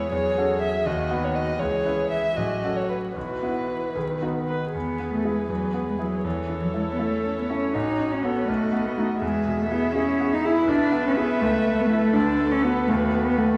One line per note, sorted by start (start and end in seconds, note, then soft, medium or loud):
0.00 0.12 E2 soft
0.00 0.12 G#3 soft
0.00 0.14 B3 soft
0.00 0.11 E4 soft
0.00 0.15 E4 soft
0.00 0.15 G#4 soft
0.00 0.11 C#5 medium
0.12 0.36 E2 soft
0.12 0.87 F#3 soft
0.12 0.88 G#4 medium
0.12 0.60 C#5 medium
0.37 0.82 C#4 soft
0.37 0.82 F#4 soft
0.37 0.83 A4 soft
0.61 0.87 E5 medium
0.85 1.10 D#2 soft
0.85 1.59 D#3 soft
0.85 1.59 F#4 soft
0.85 1.25 D#5 medium
1.11 1.56 B3 soft
1.11 1.56 F#4 soft
1.11 1.56 B4 soft
1.24 1.36 C#5 medium
1.35 1.61 D#5 medium
1.60 1.84 C#2 soft
1.60 2.38 E3 soft
1.60 2.35 G#4 medium
1.60 2.10 C#5 medium
1.85 2.33 C#4 soft
1.85 2.33 E4 soft
1.85 2.33 B4 soft
2.10 2.38 E5 medium
2.36 2.62 A1 soft
2.36 3.16 F#3 soft
2.36 3.14 F#4 soft
2.36 2.78 D#5 soft
2.63 3.12 C#4 soft
2.63 3.12 F#4 soft
2.63 3.12 A4 soft
2.76 2.88 C#5 soft
2.89 2.97 B4 soft
3.15 3.42 B1 soft
3.15 3.97 E3 soft
3.15 3.89 F#4 soft
3.15 4.46 B4 medium
3.43 3.92 B3 soft
3.43 3.92 E4 soft
3.43 3.92 F#4 soft
3.95 4.21 B1 soft
3.95 4.54 D#3 soft
3.95 4.03 G#4 soft
4.22 4.71 B3 soft
4.22 4.71 D#4 soft
4.22 4.30 F#4 soft
4.22 4.71 F#4 soft
4.48 4.74 B4 soft
4.75 5.48 E2 soft
4.75 5.10 B3 soft
4.75 6.26 G#4 soft
4.75 6.21 B4 soft
4.99 5.40 B3 soft
5.13 5.27 A3 soft
5.25 5.50 G#3 soft
5.25 5.47 E4 soft
5.25 5.47 G#4 soft
5.49 6.22 E2 soft
5.49 5.87 F#3 soft
5.74 6.14 B3 soft
5.88 5.93 G#3 soft
5.99 6.27 F#3 soft
5.99 6.22 E4 soft
5.99 6.22 G#4 soft
6.24 7.70 E2 soft
6.24 6.65 E3 soft
6.24 7.73 A4 soft
6.24 8.49 C#5 soft
6.49 6.89 E3 soft
6.63 6.74 F#3 soft
6.74 6.82 G#3 soft
6.74 6.97 E4 soft
6.74 6.97 A4 soft
6.91 7.01 B3 soft
6.99 7.37 A3 soft
6.99 7.22 E4 soft
6.99 7.22 A4 soft
7.25 7.64 C#4 soft
7.38 7.51 B3 soft
7.50 7.76 C#4 soft
7.50 7.72 E4 soft
7.50 7.72 A4 soft
7.74 8.46 A1 soft
7.74 8.14 D#4 medium
7.74 9.19 F#4 soft
7.99 8.38 C#4 soft
8.13 8.24 C#4 soft
8.23 8.47 B3 medium
8.23 8.46 F#4 soft
8.23 8.46 A4 soft
8.48 9.20 B1 soft
8.48 8.88 A3 medium
8.48 9.21 D#5 soft
8.73 9.12 B3 soft
8.86 8.97 B3 medium
8.98 9.06 A3 medium
8.98 9.20 D#4 soft
8.98 9.20 F#4 soft
9.21 10.65 E2 soft
9.21 9.62 G#3 soft
9.21 10.66 G#4 soft
9.21 10.66 E5 soft
9.46 9.86 B2 soft
9.60 9.70 A3 medium
9.71 9.95 B3 medium
9.71 9.93 E4 soft
9.71 9.93 G#4 soft
9.95 10.35 C#4 medium
9.95 10.18 E4 soft
9.95 10.18 G#4 soft
10.20 10.59 B3 soft
10.33 10.46 D#4 medium
10.44 10.66 E4 soft
10.44 10.70 E4 medium
10.44 10.67 G#4 soft
10.68 11.39 B1 soft
10.68 11.05 D4 medium
10.68 12.10 B4 soft
10.68 12.10 E5 medium
10.92 11.31 B3 soft
11.07 11.11 C#4 medium
11.17 11.43 B3 medium
11.17 11.39 E4 soft
11.17 11.39 G#4 soft
11.41 12.12 C#2 soft
11.41 11.81 A3 medium
11.66 12.05 A3 soft
11.79 11.89 B3 medium
11.90 12.15 A3 medium
11.90 12.12 E4 soft
11.90 12.12 A4 soft
12.13 12.86 D2 soft
12.13 12.53 D4 medium
12.13 12.91 A4 soft
12.13 13.57 B4 medium
12.40 12.79 A3 soft
12.52 12.64 C#4 medium
12.63 12.89 B3 medium
12.63 12.86 F#4 soft
12.63 12.86 B4 soft
12.88 13.57 D#2 medium
12.88 13.27 A3 medium
12.88 13.57 F#4 soft
13.14 13.52 B3 soft
13.26 13.38 B3 medium
13.37 13.57 A3 medium
13.37 13.57 F#4 soft
13.37 13.57 B4 soft